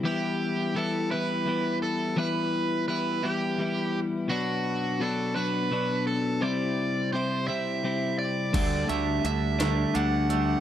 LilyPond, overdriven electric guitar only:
\new Staff \with { instrumentName = "Overdriven electric guitar" } { \time 6/8 \key e \minor \tempo 4. = 56 g'4 a'8 b'4 a'8 | b'4 b'8 g'4 r8 | fis'4 a'8 b'4 a'8 | d''4 c''8 e''4 d''8~ |
d''8 e''8 e''4 fis''4 | }